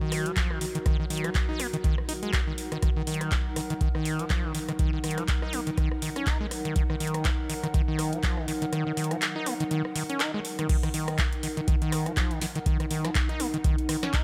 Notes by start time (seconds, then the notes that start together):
Already playing: F#3 D#4 F#4 A#4 F#5
0.01 D#3
0.12 cross-stick, open hi-hat
0.26 F3, closed hi-hat
0.37 F3, kick, clap, closed hi-hat
0.51 D#3, cross-stick
0.61 D#3, open hi-hat
0.75 D#3, closed hi-hat
0.86 D#3, kick, cross-stick, closed hi-hat
1.00 D#3
1.10 D#3, open hi-hat
1.17 closed hi-hat
1.24 F3, cross-stick, closed hi-hat
1.35 kick, clap, closed hi-hat
1.49 D#4
1.60 A#3, cross-stick, open hi-hat
1.74 D#3, closed hi-hat
1.84 D#3, kick, closed hi-hat
1.98 cross-stick
2.09 D#4, open hi-hat
2.23 G#3, closed hi-hat
2.33 F#3, kick, cross-stick, clap, closed hi-hat
2.47 D#3
2.58 open hi-hat
2.72 D#3, cross-stick, closed hi-hat
2.83 D#3 D#4, kick, cross-stick, closed hi-hat
2.96 D#3
3.07 D#3, open hi-hat
3.14 closed hi-hat
3.21 cross-stick, closed hi-hat
3.32 F3, kick, clap, closed hi-hat
3.56 D#3, cross-stick, open hi-hat
3.70 D#3, closed hi-hat
3.81 D#3, kick, closed hi-hat
3.95 D#3, cross-stick
4.05 open hi-hat
4.19 F3, closed hi-hat
4.30 F3, kick, cross-stick, clap, closed hi-hat
4.44 D#3
4.55 D#3, open hi-hat
4.69 D#3, cross-stick, closed hi-hat
4.79 D#3, kick, closed hi-hat
4.93 D#3
5.04 D#3, cross-stick, open hi-hat
5.11 closed hi-hat
5.18 F3, cross-stick, closed hi-hat
5.28 kick, clap, closed hi-hat
5.42 D#4, cross-stick
5.53 A#3, open hi-hat
5.67 D#3, closed hi-hat
5.78 D#3, kick, cross-stick, closed hi-hat
5.91 cross-stick
6.02 D#3, open hi-hat
6.16 C#4, cross-stick, closed hi-hat
6.27 D#4, kick, clap, closed hi-hat
6.41 G#3
6.51 cross-stick, open hi-hat
6.65 D#3, closed hi-hat
6.76 D#3, kick, closed hi-hat
6.90 D#3, cross-stick
7.00 D#3, open hi-hat
7.07 closed hi-hat
7.14 cross-stick, closed hi-hat
7.25 F3, kick, cross-stick, clap, closed hi-hat
7.50 D#3, open hi-hat
7.64 D#3, cross-stick, closed hi-hat
7.74 D#3, kick, closed hi-hat
7.88 D#3
7.99 cross-stick, open hi-hat
8.13 F3, closed hi-hat
8.23 F3, kick, clap, closed hi-hat
8.37 D#3, cross-stick
8.48 D#3, open hi-hat
8.62 D#3, closed hi-hat
8.73 D#3, cross-stick, closed hi-hat
8.87 D#3
8.97 D#3, open hi-hat
9.04 closed hi-hat
9.11 F3, cross-stick, closed hi-hat
9.22 clap, closed hi-hat
9.36 D#4
9.46 A#3, cross-stick, open hi-hat
9.60 D#3, closed hi-hat
9.71 D#3, closed hi-hat
9.85 cross-stick
9.96 D#3, open hi-hat
10.10 C#4, closed hi-hat
10.20 D#4, cross-stick, clap, closed hi-hat
10.34 G#3
10.45 open hi-hat
10.59 D#3, cross-stick, closed hi-hat
10.69 D#4, kick, closed hi-hat, crash
10.83 D#3, cross-stick, closed hi-hat
10.94 D#3, open hi-hat
11.08 F#3, cross-stick, closed hi-hat
11.19 F3, kick, clap, closed hi-hat
11.33 closed hi-hat
11.43 D#3, open hi-hat
11.57 D#3, closed hi-hat
11.68 D#3, kick, closed hi-hat
11.82 D#3, closed hi-hat
11.92 cross-stick, open hi-hat
12.06 F3, cross-stick, closed hi-hat
12.17 F3, kick, clap, closed hi-hat
12.31 D#3, closed hi-hat
12.41 D#3, snare, open hi-hat
12.55 D#3, closed hi-hat
12.66 D#3, kick, closed hi-hat
12.80 D#3, cross-stick, closed hi-hat
12.91 D#3, open hi-hat
13.05 F3, cross-stick, snare, closed hi-hat
13.15 kick, clap, closed hi-hat
13.29 D#4, closed hi-hat
13.40 A#3, cross-stick, open hi-hat
13.54 D#3, closed hi-hat
13.64 D#3, kick, closed hi-hat
13.78 closed hi-hat
13.89 D#3, cross-stick, open hi-hat
14.03 C#4, cross-stick, snare, closed hi-hat
14.14 D#4, kick, clap, closed hi-hat